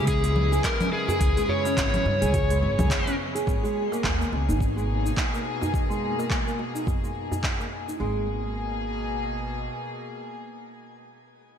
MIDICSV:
0, 0, Header, 1, 8, 480
1, 0, Start_track
1, 0, Key_signature, 5, "minor"
1, 0, Tempo, 566038
1, 1023, Time_signature, 4, 2, 24, 8
1, 9822, End_track
2, 0, Start_track
2, 0, Title_t, "Synth texture"
2, 0, Program_c, 0, 99
2, 0, Note_on_c, 0, 59, 86
2, 0, Note_on_c, 0, 87, 85
2, 2952, Note_off_c, 0, 87, 0
2, 2953, Note_off_c, 0, 59, 0
2, 9822, End_track
3, 0, Start_track
3, 0, Title_t, "Electric slide guitar"
3, 0, Program_c, 1, 29
3, 67, Note_on_c, 1, 68, 96
3, 511, Note_off_c, 1, 68, 0
3, 549, Note_on_c, 1, 70, 97
3, 781, Note_off_c, 1, 70, 0
3, 785, Note_on_c, 1, 68, 106
3, 1267, Note_on_c, 1, 73, 104
3, 1278, Note_off_c, 1, 68, 0
3, 2671, Note_off_c, 1, 73, 0
3, 9822, End_track
4, 0, Start_track
4, 0, Title_t, "Nylon-string guitar"
4, 0, Program_c, 2, 24
4, 0, Note_on_c, 2, 68, 77
4, 188, Note_off_c, 2, 68, 0
4, 202, Note_on_c, 2, 56, 78
4, 259, Note_off_c, 2, 56, 0
4, 442, Note_on_c, 2, 68, 96
4, 538, Note_off_c, 2, 68, 0
4, 680, Note_on_c, 2, 61, 75
4, 738, Note_off_c, 2, 61, 0
4, 923, Note_on_c, 2, 68, 78
4, 1148, Note_off_c, 2, 68, 0
4, 1161, Note_on_c, 2, 56, 106
4, 1387, Note_off_c, 2, 56, 0
4, 1399, Note_on_c, 2, 61, 80
4, 1626, Note_off_c, 2, 61, 0
4, 1637, Note_on_c, 2, 61, 73
4, 1736, Note_off_c, 2, 61, 0
4, 1879, Note_on_c, 2, 68, 79
4, 2106, Note_off_c, 2, 68, 0
4, 2121, Note_on_c, 2, 56, 87
4, 2179, Note_off_c, 2, 56, 0
4, 2361, Note_on_c, 2, 68, 98
4, 2458, Note_off_c, 2, 68, 0
4, 2602, Note_on_c, 2, 61, 76
4, 2659, Note_off_c, 2, 61, 0
4, 2841, Note_on_c, 2, 68, 76
4, 2942, Note_off_c, 2, 68, 0
4, 3081, Note_on_c, 2, 56, 99
4, 3307, Note_off_c, 2, 56, 0
4, 3323, Note_on_c, 2, 58, 80
4, 3548, Note_off_c, 2, 58, 0
4, 3564, Note_on_c, 2, 58, 70
4, 3659, Note_off_c, 2, 58, 0
4, 3804, Note_on_c, 2, 63, 73
4, 4029, Note_off_c, 2, 63, 0
4, 4040, Note_on_c, 2, 56, 76
4, 4098, Note_off_c, 2, 56, 0
4, 4280, Note_on_c, 2, 63, 94
4, 4377, Note_off_c, 2, 63, 0
4, 4521, Note_on_c, 2, 58, 74
4, 4579, Note_off_c, 2, 58, 0
4, 4760, Note_on_c, 2, 63, 72
4, 4986, Note_off_c, 2, 63, 0
4, 4999, Note_on_c, 2, 56, 92
4, 5226, Note_off_c, 2, 56, 0
4, 5243, Note_on_c, 2, 58, 76
4, 5468, Note_off_c, 2, 58, 0
4, 5484, Note_on_c, 2, 58, 73
4, 5579, Note_off_c, 2, 58, 0
4, 5723, Note_on_c, 2, 63, 68
4, 5948, Note_off_c, 2, 63, 0
4, 5963, Note_on_c, 2, 56, 71
4, 6020, Note_off_c, 2, 56, 0
4, 6202, Note_on_c, 2, 63, 81
4, 6298, Note_off_c, 2, 63, 0
4, 6442, Note_on_c, 2, 58, 66
4, 6499, Note_off_c, 2, 58, 0
4, 6681, Note_on_c, 2, 63, 67
4, 6783, Note_off_c, 2, 63, 0
4, 6783, Note_on_c, 2, 56, 86
4, 7006, Note_off_c, 2, 56, 0
4, 9822, End_track
5, 0, Start_track
5, 0, Title_t, "String section"
5, 0, Program_c, 3, 48
5, 0, Note_on_c, 3, 49, 78
5, 0, Note_on_c, 3, 56, 75
5, 0, Note_on_c, 3, 64, 93
5, 2905, Note_off_c, 3, 56, 0
5, 2907, Note_off_c, 3, 64, 0
5, 2908, Note_off_c, 3, 49, 0
5, 2936, Note_on_c, 3, 68, 86
5, 2938, Note_on_c, 3, 58, 73
5, 2939, Note_on_c, 3, 47, 82
5, 6745, Note_off_c, 3, 68, 0
5, 6746, Note_off_c, 3, 58, 0
5, 6747, Note_off_c, 3, 47, 0
5, 6775, Note_on_c, 3, 47, 74
5, 6776, Note_on_c, 3, 58, 68
5, 6776, Note_on_c, 3, 68, 80
5, 9343, Note_off_c, 3, 47, 0
5, 9343, Note_off_c, 3, 68, 0
5, 9344, Note_off_c, 3, 58, 0
5, 9822, End_track
6, 0, Start_track
6, 0, Title_t, "Upright bass"
6, 0, Program_c, 4, 32
6, 0, Note_on_c, 4, 37, 96
6, 480, Note_off_c, 4, 37, 0
6, 1022, Note_on_c, 4, 37, 99
6, 1107, Note_off_c, 4, 37, 0
6, 1503, Note_on_c, 4, 32, 90
6, 1664, Note_off_c, 4, 32, 0
6, 1740, Note_on_c, 4, 43, 80
6, 1881, Note_on_c, 4, 37, 98
6, 1894, Note_off_c, 4, 43, 0
6, 2218, Note_off_c, 4, 37, 0
6, 2223, Note_on_c, 4, 32, 84
6, 2361, Note_on_c, 4, 37, 106
6, 2374, Note_off_c, 4, 32, 0
6, 2423, Note_off_c, 4, 37, 0
6, 2945, Note_on_c, 4, 32, 96
6, 3029, Note_off_c, 4, 32, 0
6, 3424, Note_on_c, 4, 39, 81
6, 3585, Note_off_c, 4, 39, 0
6, 3665, Note_on_c, 4, 37, 72
6, 3803, Note_on_c, 4, 32, 82
6, 3815, Note_off_c, 4, 37, 0
6, 4321, Note_off_c, 4, 32, 0
6, 6784, Note_on_c, 4, 32, 80
6, 8189, Note_off_c, 4, 32, 0
6, 9822, End_track
7, 0, Start_track
7, 0, Title_t, "Darbuka"
7, 786, Note_on_c, 9, 62, 53
7, 871, Note_off_c, 9, 62, 0
7, 917, Note_on_c, 9, 64, 91
7, 922, Note_on_c, 9, 63, 55
7, 1002, Note_off_c, 9, 64, 0
7, 1007, Note_off_c, 9, 63, 0
7, 1029, Note_on_c, 9, 62, 54
7, 1114, Note_off_c, 9, 62, 0
7, 1259, Note_on_c, 9, 64, 80
7, 1344, Note_off_c, 9, 64, 0
7, 1399, Note_on_c, 9, 63, 63
7, 1404, Note_on_c, 9, 62, 42
7, 1484, Note_off_c, 9, 63, 0
7, 1489, Note_off_c, 9, 62, 0
7, 1747, Note_on_c, 9, 62, 56
7, 1749, Note_on_c, 9, 63, 61
7, 1831, Note_off_c, 9, 62, 0
7, 1834, Note_off_c, 9, 63, 0
7, 1987, Note_on_c, 9, 64, 98
7, 2071, Note_off_c, 9, 64, 0
7, 2227, Note_on_c, 9, 63, 35
7, 2312, Note_off_c, 9, 63, 0
7, 2368, Note_on_c, 9, 64, 91
7, 2453, Note_off_c, 9, 64, 0
7, 2947, Note_on_c, 9, 62, 53
7, 3032, Note_off_c, 9, 62, 0
7, 3326, Note_on_c, 9, 62, 31
7, 3327, Note_on_c, 9, 63, 65
7, 3411, Note_off_c, 9, 62, 0
7, 3412, Note_off_c, 9, 63, 0
7, 3670, Note_on_c, 9, 62, 46
7, 3671, Note_on_c, 9, 63, 63
7, 3755, Note_off_c, 9, 62, 0
7, 3756, Note_off_c, 9, 63, 0
7, 4619, Note_on_c, 9, 62, 50
7, 4704, Note_off_c, 9, 62, 0
7, 4762, Note_on_c, 9, 63, 57
7, 4768, Note_on_c, 9, 64, 75
7, 4846, Note_off_c, 9, 63, 0
7, 4853, Note_off_c, 9, 64, 0
7, 4867, Note_on_c, 9, 62, 45
7, 4952, Note_off_c, 9, 62, 0
7, 5252, Note_on_c, 9, 63, 62
7, 5337, Note_off_c, 9, 63, 0
7, 5588, Note_on_c, 9, 62, 41
7, 5590, Note_on_c, 9, 63, 55
7, 5673, Note_off_c, 9, 62, 0
7, 5675, Note_off_c, 9, 63, 0
7, 5826, Note_on_c, 9, 64, 90
7, 5910, Note_off_c, 9, 64, 0
7, 6064, Note_on_c, 9, 63, 32
7, 6149, Note_off_c, 9, 63, 0
7, 6203, Note_on_c, 9, 64, 85
7, 6287, Note_off_c, 9, 64, 0
7, 9822, End_track
8, 0, Start_track
8, 0, Title_t, "Drums"
8, 62, Note_on_c, 9, 46, 70
8, 64, Note_on_c, 9, 36, 90
8, 68, Note_on_c, 9, 82, 52
8, 146, Note_off_c, 9, 46, 0
8, 149, Note_off_c, 9, 36, 0
8, 153, Note_off_c, 9, 82, 0
8, 202, Note_on_c, 9, 46, 45
8, 208, Note_on_c, 9, 82, 34
8, 287, Note_off_c, 9, 46, 0
8, 293, Note_off_c, 9, 82, 0
8, 303, Note_on_c, 9, 64, 64
8, 388, Note_off_c, 9, 64, 0
8, 447, Note_on_c, 9, 82, 66
8, 532, Note_off_c, 9, 82, 0
8, 543, Note_on_c, 9, 39, 101
8, 543, Note_on_c, 9, 46, 71
8, 544, Note_on_c, 9, 36, 97
8, 550, Note_on_c, 9, 82, 53
8, 628, Note_off_c, 9, 36, 0
8, 628, Note_off_c, 9, 39, 0
8, 628, Note_off_c, 9, 46, 0
8, 634, Note_off_c, 9, 82, 0
8, 683, Note_on_c, 9, 46, 31
8, 683, Note_on_c, 9, 64, 81
8, 689, Note_on_c, 9, 82, 30
8, 768, Note_off_c, 9, 46, 0
8, 768, Note_off_c, 9, 64, 0
8, 774, Note_off_c, 9, 82, 0
8, 928, Note_on_c, 9, 82, 68
8, 1013, Note_off_c, 9, 82, 0
8, 1022, Note_on_c, 9, 36, 104
8, 1023, Note_on_c, 9, 46, 79
8, 1029, Note_on_c, 9, 82, 58
8, 1107, Note_off_c, 9, 36, 0
8, 1108, Note_off_c, 9, 46, 0
8, 1114, Note_off_c, 9, 82, 0
8, 1163, Note_on_c, 9, 46, 35
8, 1169, Note_on_c, 9, 82, 36
8, 1247, Note_off_c, 9, 46, 0
8, 1254, Note_off_c, 9, 82, 0
8, 1402, Note_on_c, 9, 46, 31
8, 1408, Note_on_c, 9, 82, 66
8, 1487, Note_off_c, 9, 46, 0
8, 1493, Note_off_c, 9, 82, 0
8, 1502, Note_on_c, 9, 36, 114
8, 1506, Note_on_c, 9, 39, 107
8, 1506, Note_on_c, 9, 46, 76
8, 1513, Note_on_c, 9, 82, 55
8, 1587, Note_off_c, 9, 36, 0
8, 1591, Note_off_c, 9, 39, 0
8, 1591, Note_off_c, 9, 46, 0
8, 1597, Note_off_c, 9, 82, 0
8, 1644, Note_on_c, 9, 46, 29
8, 1644, Note_on_c, 9, 64, 56
8, 1650, Note_on_c, 9, 82, 29
8, 1728, Note_off_c, 9, 46, 0
8, 1728, Note_off_c, 9, 64, 0
8, 1735, Note_off_c, 9, 82, 0
8, 1882, Note_on_c, 9, 46, 45
8, 1889, Note_on_c, 9, 82, 66
8, 1967, Note_off_c, 9, 46, 0
8, 1973, Note_off_c, 9, 82, 0
8, 1982, Note_on_c, 9, 36, 96
8, 1984, Note_on_c, 9, 46, 70
8, 1990, Note_on_c, 9, 82, 54
8, 2067, Note_off_c, 9, 36, 0
8, 2069, Note_off_c, 9, 46, 0
8, 2075, Note_off_c, 9, 82, 0
8, 2124, Note_on_c, 9, 46, 47
8, 2130, Note_on_c, 9, 82, 33
8, 2208, Note_off_c, 9, 46, 0
8, 2215, Note_off_c, 9, 82, 0
8, 2365, Note_on_c, 9, 46, 33
8, 2365, Note_on_c, 9, 64, 81
8, 2371, Note_on_c, 9, 82, 68
8, 2450, Note_off_c, 9, 46, 0
8, 2450, Note_off_c, 9, 64, 0
8, 2456, Note_off_c, 9, 82, 0
8, 2463, Note_on_c, 9, 36, 103
8, 2467, Note_on_c, 9, 39, 108
8, 2467, Note_on_c, 9, 46, 68
8, 2473, Note_on_c, 9, 82, 53
8, 2548, Note_off_c, 9, 36, 0
8, 2551, Note_off_c, 9, 39, 0
8, 2551, Note_off_c, 9, 46, 0
8, 2558, Note_off_c, 9, 82, 0
8, 2606, Note_on_c, 9, 46, 32
8, 2612, Note_on_c, 9, 82, 33
8, 2691, Note_off_c, 9, 46, 0
8, 2697, Note_off_c, 9, 82, 0
8, 2847, Note_on_c, 9, 46, 35
8, 2853, Note_on_c, 9, 82, 66
8, 2931, Note_off_c, 9, 46, 0
8, 2938, Note_off_c, 9, 82, 0
8, 2944, Note_on_c, 9, 36, 101
8, 2955, Note_on_c, 9, 82, 56
8, 3029, Note_off_c, 9, 36, 0
8, 3040, Note_off_c, 9, 82, 0
8, 3094, Note_on_c, 9, 82, 34
8, 3179, Note_off_c, 9, 82, 0
8, 3333, Note_on_c, 9, 82, 64
8, 3418, Note_off_c, 9, 82, 0
8, 3424, Note_on_c, 9, 36, 101
8, 3427, Note_on_c, 9, 39, 102
8, 3434, Note_on_c, 9, 82, 56
8, 3509, Note_off_c, 9, 36, 0
8, 3512, Note_off_c, 9, 39, 0
8, 3518, Note_off_c, 9, 82, 0
8, 3572, Note_on_c, 9, 82, 27
8, 3657, Note_off_c, 9, 82, 0
8, 3811, Note_on_c, 9, 82, 62
8, 3896, Note_off_c, 9, 82, 0
8, 3904, Note_on_c, 9, 36, 89
8, 3913, Note_on_c, 9, 82, 53
8, 3989, Note_off_c, 9, 36, 0
8, 3998, Note_off_c, 9, 82, 0
8, 4053, Note_on_c, 9, 82, 32
8, 4138, Note_off_c, 9, 82, 0
8, 4291, Note_on_c, 9, 82, 59
8, 4376, Note_off_c, 9, 82, 0
8, 4385, Note_on_c, 9, 36, 94
8, 4387, Note_on_c, 9, 39, 96
8, 4393, Note_on_c, 9, 82, 53
8, 4469, Note_off_c, 9, 36, 0
8, 4472, Note_off_c, 9, 39, 0
8, 4478, Note_off_c, 9, 82, 0
8, 4530, Note_on_c, 9, 82, 31
8, 4615, Note_off_c, 9, 82, 0
8, 4770, Note_on_c, 9, 82, 61
8, 4855, Note_off_c, 9, 82, 0
8, 4865, Note_on_c, 9, 36, 99
8, 4873, Note_on_c, 9, 82, 56
8, 4950, Note_off_c, 9, 36, 0
8, 4958, Note_off_c, 9, 82, 0
8, 5011, Note_on_c, 9, 82, 32
8, 5096, Note_off_c, 9, 82, 0
8, 5252, Note_on_c, 9, 82, 56
8, 5336, Note_off_c, 9, 82, 0
8, 5345, Note_on_c, 9, 36, 103
8, 5346, Note_on_c, 9, 39, 94
8, 5353, Note_on_c, 9, 82, 52
8, 5430, Note_off_c, 9, 36, 0
8, 5431, Note_off_c, 9, 39, 0
8, 5437, Note_off_c, 9, 82, 0
8, 5493, Note_on_c, 9, 82, 29
8, 5577, Note_off_c, 9, 82, 0
8, 5731, Note_on_c, 9, 82, 64
8, 5816, Note_off_c, 9, 82, 0
8, 5826, Note_on_c, 9, 36, 92
8, 5832, Note_on_c, 9, 82, 52
8, 5911, Note_off_c, 9, 36, 0
8, 5917, Note_off_c, 9, 82, 0
8, 5972, Note_on_c, 9, 82, 32
8, 6056, Note_off_c, 9, 82, 0
8, 6212, Note_on_c, 9, 82, 61
8, 6297, Note_off_c, 9, 82, 0
8, 6305, Note_on_c, 9, 36, 89
8, 6306, Note_on_c, 9, 39, 98
8, 6312, Note_on_c, 9, 82, 52
8, 6390, Note_off_c, 9, 36, 0
8, 6391, Note_off_c, 9, 39, 0
8, 6397, Note_off_c, 9, 82, 0
8, 6449, Note_on_c, 9, 82, 31
8, 6534, Note_off_c, 9, 82, 0
8, 6687, Note_on_c, 9, 82, 60
8, 6772, Note_off_c, 9, 82, 0
8, 9822, End_track
0, 0, End_of_file